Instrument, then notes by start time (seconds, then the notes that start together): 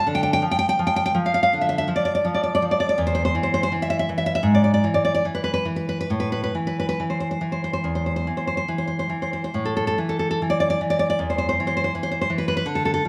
nylon-string guitar
0.07 D3
0.15 G5
0.23 G5
0.33 G5
0.42 F3
0.51 G5
0.59 G5
0.69 G5
0.79 F3
0.87 G5
0.96 G5
1.06 G5
1.14 F3
1.26 F5
1.34 F5
1.43 F5
1.53 D3
1.61 E5
1.69 E5
1.78 E5
1.88 F3
1.96 D5
2.05 D5
2.15 D5
2.25 F3
2.34 D5
2.43 D5
2.55 D5
2.62 F3
2.71 D5
2.80 D5
2.89 D5
2.98 E2
3.07 C5
3.15 C5
3.25 C5
3.35 E3
3.43 C5
3.54 C5
3.63 C5
3.72 E3
3.82 E5
3.90 E5
3.99 E5
4.09 E3
4.18 E5
4.26 E5
4.35 E5
4.43 G#2
4.55 D5
4.64 D5
4.74 D5
4.84 E3
4.94 D5
5.05 D5
5.14 D5
5.25 E3
5.35 B4
5.44 B4
5.54 B4
5.65 E3
5.76 B4
5.89 B4
6.01 B4
6.10 A2
6.20 B4
6.32 B4
6.44 B4
6.55 E3
6.67 B4
6.80 B4
6.89 B4
7.00 E3
7.10 C5
7.20 C5
7.31 C5
7.41 E3
7.52 C5
7.64 C5
7.73 C5
7.84 E2
7.95 C5
8.06 C5
8.16 C5
8.27 E3
8.37 C5
8.47 C5
8.57 C5
8.68 E3
8.78 C5
8.87 C5
8.99 C5
9.10 E3
9.22 C5
9.33 C5
9.44 C5
9.54 A2
9.65 A4
9.77 A4
9.87 A4
9.98 E3
10.09 A4
10.19 A4
10.31 A4
10.42 E3
10.50 D5
10.60 D5
10.70 D5
10.81 E3
10.90 D5
10.99 D5
11.10 D5
11.19 E2
11.30 C5
11.38 C5
11.49 C5
11.60 E3
11.67 C5
11.77 C5
11.84 C5
11.95 E3
12.03 C5
12.11 C5
12.21 C5
12.30 E3
12.38 B4
12.48 B4
12.57 B4
12.66 D3
12.75 A4
12.85 A4
12.94 A4
13.05 F3